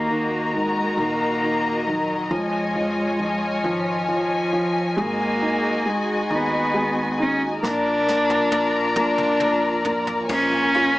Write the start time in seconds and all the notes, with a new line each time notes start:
Already playing: D#2 D#3 A#3 F#4 A#4 D#5 A#5
0.08 D#3
0.53 D#3 G#3
0.97 A#1 D#3 A#3
1.42 D#3
1.86 D#3 F#3
2.31 F2 F3 G#3 F4 C#5 G#5
2.76 F3
3.20 F3
3.64 G#1 F3
4.08 F3
4.53 F3
4.97 G#1 G#3 A#3 F#4 G#4 D#5
5.41 D#4
5.86 G#3
5.90 G#3
6.30 D#2 D#4
6.34 B3
6.74 G#3
7.19 C#4 D#4
7.63 A#1 A#3 D4 F4 A#4 D5 A#5, snare
8.07 A#3, snare
8.30 high tom
8.52 A#3, high tom
8.96 F2 A#3 D4, mid tom
9.18 mid tom
9.40 A#3, mid tom
9.85 A#3, floor tom
10.07 floor tom
10.29 A#1 A#2 F3 G#3 A#3 C#4 F4 A#4 C#5 G#5, kick, crash
10.52 G#3 C#4 F4
10.74 F4, ride
10.96 F4